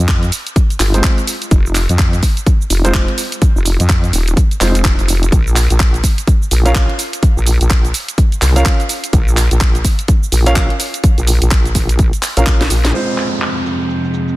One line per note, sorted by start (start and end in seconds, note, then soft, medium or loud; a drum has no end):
0.00 0.31 F2 medium
0.08 kick loud
0.08 clap loud
0.08 closed hi-hat medium
0.08 shaker soft
0.23 closed hi-hat soft
0.23 shaker soft
0.32 open hi-hat loud
0.32 shaker medium
0.47 closed hi-hat medium
0.47 shaker soft
0.56 kick loud
0.56 closed hi-hat medium
0.56 shaker soft
0.70 closed hi-hat soft
0.70 shaker soft
0.80 1.02 G1 loud
0.80 clap medium
0.80 open hi-hat loud
0.80 shaker medium
0.94 1.17 G#3 medium
0.94 1.17 C4 medium
0.94 1.17 F4 medium
0.94 1.17 C5 medium
0.94 closed hi-hat medium
0.94 shaker soft
1.04 kick loud
1.04 clap loud
1.04 closed hi-hat medium
1.04 shaker soft
1.18 closed hi-hat soft
1.18 shaker soft
1.27 open hi-hat loud
1.27 shaker medium
1.42 closed hi-hat medium
1.42 shaker soft
1.51 1.87 F1 loud
1.51 kick loud
1.51 closed hi-hat medium
1.51 shaker soft
1.66 shaker soft
1.75 clap medium
1.75 open hi-hat loud
1.75 shaker medium
1.89 2.21 F2 loud
1.89 closed hi-hat soft
1.89 shaker soft
1.99 kick loud
1.99 clap loud
1.99 closed hi-hat medium
1.99 shaker soft
2.13 closed hi-hat soft
2.13 shaker soft
2.23 kick medium
2.23 open hi-hat loud
2.23 shaker medium
2.37 closed hi-hat medium
2.37 shaker soft
2.47 kick loud
2.47 closed hi-hat medium
2.47 shaker soft
2.61 shaker soft
2.70 3.06 F1 medium
2.70 open hi-hat loud
2.70 shaker medium
2.85 3.07 G#3 medium
2.85 3.07 C4 medium
2.85 3.07 F4 medium
2.85 3.07 C5 loud
2.85 closed hi-hat medium
2.85 shaker soft
2.94 kick loud
2.94 clap loud
2.94 closed hi-hat medium
2.94 shaker soft
3.08 closed hi-hat soft
3.18 open hi-hat loud
3.18 shaker medium
3.32 closed hi-hat medium
3.32 shaker soft
3.42 kick loud
3.42 closed hi-hat medium
3.42 shaker soft
3.56 3.78 F1 loud
3.56 shaker soft
3.66 open hi-hat loud
3.66 shaker medium
3.80 4.12 F2 medium
3.80 closed hi-hat soft
3.80 shaker soft
3.89 kick loud
3.89 clap loud
3.89 closed hi-hat medium
3.89 shaker soft
4.04 closed hi-hat soft
4.04 shaker soft
4.13 4.35 D#1 loud
4.13 open hi-hat loud
4.13 shaker medium
4.28 closed hi-hat medium
4.28 shaker soft
4.37 kick loud
4.37 closed hi-hat medium
4.37 shaker soft
4.51 closed hi-hat soft
4.51 shaker soft
4.61 4.97 F1 medium
4.61 4.77 G#3 medium
4.61 4.77 C4 medium
4.61 4.77 F4 medium
4.61 4.77 C5 medium
4.61 clap medium
4.61 open hi-hat loud
4.61 shaker medium
4.75 closed hi-hat medium
4.75 shaker soft
4.85 kick loud
4.85 clap loud
4.85 closed hi-hat medium
4.85 shaker soft
4.99 5.31 F1 loud
4.99 closed hi-hat soft
4.99 shaker soft
5.08 open hi-hat loud
5.08 shaker medium
5.23 closed hi-hat soft
5.23 shaker soft
5.32 5.68 A#1 loud
5.32 kick loud
5.32 closed hi-hat medium
5.32 shaker soft
5.47 shaker soft
5.56 clap medium
5.56 open hi-hat loud
5.56 shaker medium
5.70 6.02 A#1 loud
5.70 closed hi-hat soft
5.70 shaker soft
5.80 kick loud
5.80 clap loud
5.80 closed hi-hat medium
5.80 shaker soft
5.94 closed hi-hat soft
5.94 shaker soft
6.04 kick medium
6.04 open hi-hat loud
6.04 shaker medium
6.18 closed hi-hat soft
6.18 shaker soft
6.27 kick loud
6.27 closed hi-hat medium
6.27 shaker soft
6.42 shaker soft
6.51 6.87 A#1 medium
6.51 open hi-hat loud
6.51 shaker medium
6.66 6.88 C#4 medium
6.66 6.88 F4 medium
6.66 6.88 A#4 medium
6.66 6.88 F5 loud
6.66 closed hi-hat soft
6.66 shaker soft
6.75 kick loud
6.75 clap loud
6.75 closed hi-hat medium
6.75 shaker soft
6.89 closed hi-hat soft
6.99 open hi-hat loud
6.99 shaker medium
7.13 closed hi-hat medium
7.13 shaker soft
7.23 kick loud
7.23 closed hi-hat medium
7.23 shaker soft
7.37 7.59 A#1 loud
7.37 shaker soft
7.47 open hi-hat loud
7.47 shaker medium
7.61 7.93 A#1 loud
7.61 closed hi-hat medium
7.61 shaker soft
7.70 kick loud
7.70 clap loud
7.70 closed hi-hat medium
7.70 shaker soft
7.85 closed hi-hat soft
7.85 shaker soft
7.94 open hi-hat loud
7.94 shaker medium
8.08 closed hi-hat medium
8.08 shaker soft
8.18 kick loud
8.18 closed hi-hat medium
8.18 shaker soft
8.32 closed hi-hat soft
8.32 shaker soft
8.42 8.64 C2 loud
8.42 clap medium
8.42 open hi-hat loud
8.42 shaker medium
8.56 8.79 C#4 medium
8.56 8.79 F4 medium
8.56 8.79 A#4 medium
8.56 8.79 F5 medium
8.56 closed hi-hat medium
8.56 shaker soft
8.66 kick loud
8.66 clap loud
8.66 closed hi-hat medium
8.66 shaker soft
8.80 closed hi-hat soft
8.80 shaker soft
8.89 open hi-hat loud
8.89 shaker medium
9.04 closed hi-hat medium
9.04 shaker soft
9.13 9.49 A#1 loud
9.13 kick loud
9.13 closed hi-hat medium
9.13 shaker soft
9.28 shaker soft
9.37 clap medium
9.37 open hi-hat loud
9.37 shaker medium
9.51 9.83 A#1 medium
9.51 closed hi-hat medium
9.51 shaker soft
9.61 kick loud
9.61 clap loud
9.61 closed hi-hat medium
9.61 shaker soft
9.75 closed hi-hat soft
9.75 shaker soft
9.85 kick medium
9.85 open hi-hat loud
9.85 shaker medium
9.99 closed hi-hat medium
9.99 shaker soft
10.08 kick loud
10.08 closed hi-hat medium
10.08 shaker soft
10.23 shaker soft
10.32 10.68 A#1 medium
10.32 open hi-hat loud
10.32 shaker medium
10.46 10.69 C#4 loud
10.46 10.69 F4 medium
10.46 10.69 A#4 medium
10.46 10.69 F5 loud
10.46 closed hi-hat medium
10.46 shaker soft
10.56 kick loud
10.56 clap loud
10.56 closed hi-hat medium
10.56 shaker soft
10.70 closed hi-hat soft
10.80 open hi-hat loud
10.80 shaker medium
10.94 closed hi-hat medium
10.94 shaker soft
11.04 kick loud
11.04 closed hi-hat medium
11.04 shaker soft
11.18 11.40 A#1 loud
11.18 closed hi-hat soft
11.18 shaker soft
11.27 open hi-hat loud
11.27 shaker medium
11.42 11.74 A#1 loud
11.42 closed hi-hat medium
11.42 shaker soft
11.51 kick loud
11.51 clap loud
11.51 closed hi-hat medium
11.51 shaker soft
11.65 closed hi-hat soft
11.65 shaker soft
11.75 12.11 A#1 medium
11.75 kick medium
11.75 open hi-hat loud
11.75 shaker medium
11.89 closed hi-hat medium
11.89 shaker soft
11.99 kick loud
11.99 closed hi-hat medium
11.99 shaker soft
12.13 closed hi-hat soft
12.13 shaker soft
12.23 clap medium
12.23 open hi-hat loud
12.23 shaker medium
12.37 12.69 A#1 loud
12.37 12.60 C#4 medium
12.37 12.60 F4 medium
12.37 12.60 A#4 medium
12.37 12.60 F5 medium
12.37 closed hi-hat medium
12.37 shaker soft
12.46 kick loud
12.46 clap loud
12.46 closed hi-hat medium
12.46 shaker soft
12.61 snare medium
12.61 closed hi-hat soft
12.61 shaker soft
12.70 12.93 A#1 loud
12.70 open hi-hat loud
12.70 shaker medium
12.85 snare medium
12.85 closed hi-hat medium
12.85 shaker soft
12.94 14.36 F3 medium
12.94 14.36 G#3 medium
12.94 14.36 C4 medium
12.94 14.36 F4 medium
12.94 14.36 G#4 medium
12.94 14.36 C5 medium
12.94 downlifter medium
12.94 shaker soft
13.09 shaker soft
13.18 clap medium
13.18 shaker medium
13.33 shaker soft
13.42 clap loud
13.42 shaker soft
13.57 shaker soft
13.66 shaker medium
13.80 shaker soft
13.90 shaker soft
14.04 shaker soft
14.14 shaker medium
14.28 shaker soft